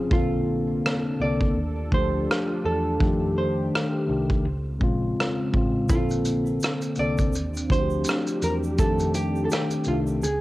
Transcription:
Already playing: F3 C4 C#4 G#4
0.09 A#1 C3 D3 A#3 C4 D4 F4 A4, kick
0.14 A4
0.86 cross-stick
1.19 C2 D3 A#3 C4 D5
1.23 A4
1.41 kick
1.56 D#2 F4 G4
1.91 D2 F3 A3 D4 C5, kick
1.95 G4
2.31 cross-stick
2.65 E2 A4
2.98 F2 D#3 A3 D4 G4, kick
3.03 G4
3.38 C5
3.75 cross-stick
4.06 C2 D#3 A3 D4
4.11 G4
4.30 kick
4.44 C#2 C#3 G#3 C4 F4
4.79 A#1 C#3 G#3 C4, kick
4.83 F4
5.20 cross-stick
5.52 A1 C#3 G#3 C4, kick
5.57 F4
5.88 A#1 C3 D3 A#3 C4 D4 F4, kick, shaker
5.92 A4
6.09 shaker
6.11 shaker
6.25 closed hi-hat, shaker
6.46 shaker
6.60 shaker
6.63 cross-stick, shaker
6.81 shaker
6.95 C2 D3 A#3 C4 D5, closed hi-hat, shaker
7.00 A4
7.18 kick, shaker
7.33 D#2 F4 G4, shaker
7.35 shaker
7.54 shaker
7.57 shaker
7.69 D2 F3 A3 D4 C5, kick, closed hi-hat, shaker
7.73 F#4
7.80 G4
7.90 shaker
8.04 shaker
8.06 cross-stick, shaker
8.27 shaker
8.42 E2 A#4, closed hi-hat, shaker
8.63 shaker
8.78 F2 D#3 A3 D4 A4, kick, shaker
8.82 G4
8.99 shaker
9.14 G4, closed hi-hat, shaker
9.36 shaker
9.45 A4
9.50 G4, shaker
9.52 cross-stick, shaker
9.71 shaker
9.84 C2 D#3 A3 F4, closed hi-hat, shaker
9.89 D4 A4
10.07 shaker
10.22 C#2 C#3 G#3 F4 G#4 C5, shaker
10.24 shaker

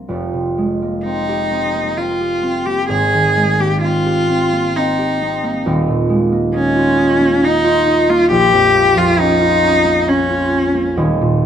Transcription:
Already playing: C2 F3 A#3 C4 D4
0.09 F1 F2
0.34 C3
0.58 G#3
0.82 A#3
1.05 C4 D#4
1.29 G4
1.51 C4
1.75 A#3
1.97 C4 F4
2.21 G4
2.43 C4
2.66 A#3 G4
2.88 G#1 G#2 G#4
3.13 D#3
3.37 G#3
3.59 A#3 G4
3.81 C4 F4
4.06 G4
4.29 C4
4.53 A#3
4.76 C4 D#4
4.99 G4
5.22 C4
5.44 A#3
5.66 D#1 D#2
5.88 A#2
6.09 G#3
6.32 A#3
6.54 C#4 D#4
6.76 F4
6.98 D#4
7.20 A#3
7.42 D#4
7.64 F4
7.87 D#4
8.10 A#3 F4
8.31 A#1 G4
8.53 F2
8.75 A#3
8.96 F2 F4
9.18 C#4 D#4
9.41 F4
9.63 C#4
9.84 A#3
10.07 C#4
10.30 F4
10.52 C#4
10.75 A#3
10.97 D#1 D#2
11.21 A#2

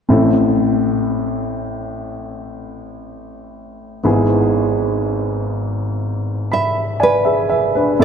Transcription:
0.09 A1 A2 C4 E4 A4
4.04 G#1 G#2 B3 E4 G#4
6.52 E5 B5
7.00 B4 D5 G#5
7.25 G#4 E5
7.49 E5
7.75 D4 B4
7.99 A1 A2 C4 E4 A4

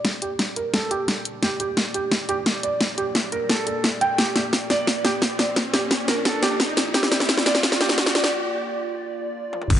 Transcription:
Already playing: A#3 G4 D5, riser
0.05 kick, snare, closed hi-hat
0.22 G4, closed hi-hat
0.39 kick, snare, closed hi-hat
0.56 A#4, closed hi-hat
0.74 A4, kick, snare, closed hi-hat
0.91 G4, closed hi-hat
1.08 kick, snare, closed hi-hat
1.25 closed hi-hat
1.43 G4, kick, snare, closed hi-hat
1.60 G4, closed hi-hat
1.77 kick, snare, closed hi-hat
1.94 G4, closed hi-hat
2.12 kick, snare, closed hi-hat
2.29 G4, closed hi-hat
2.46 kick, snare, closed hi-hat
2.63 D5, closed hi-hat
2.81 kick, snare, closed hi-hat
2.98 G4, closed hi-hat
3.15 kick, snare, closed hi-hat
3.32 A#4, closed hi-hat
3.49 A4, kick, snare, closed hi-hat
3.67 A4, closed hi-hat
3.84 kick, snare, closed hi-hat
4.01 G5, closed hi-hat
4.18 F4 G4, kick, snare, closed hi-hat
4.36 G4, snare, closed hi-hat
4.53 kick, snare, closed hi-hat
4.70 D5, snare, closed hi-hat
4.87 kick, snare, closed hi-hat
5.05 G4, snare, closed hi-hat
5.22 kick, snare, closed hi-hat
5.39 D5, snare, closed hi-hat
5.56 kick, snare, closed hi-hat
5.74 G4, snare, closed hi-hat
5.91 kick, snare, closed hi-hat
6.08 A#4, snare, closed hi-hat
6.25 A4, kick, snare, closed hi-hat
6.43 G4, snare, closed hi-hat
6.60 kick, snare, closed hi-hat
6.77 snare, closed hi-hat
6.94 G4, kick, snare, closed hi-hat
7.03 snare
7.12 G4, snare, closed hi-hat
7.20 snare
7.29 kick, snare, closed hi-hat
7.37 snare
7.46 D5, snare, closed hi-hat
7.55 snare
7.63 kick, snare, closed hi-hat
7.72 snare
7.80 G4, snare, closed hi-hat
7.89 snare
7.98 kick, snare, closed hi-hat
8.06 snare
8.15 D5, snare, closed hi-hat
8.24 snare
9.53 high tom
9.62 mid tom
9.70 G1 A#3 G4 D5, kick, closed hi-hat, crash, impact

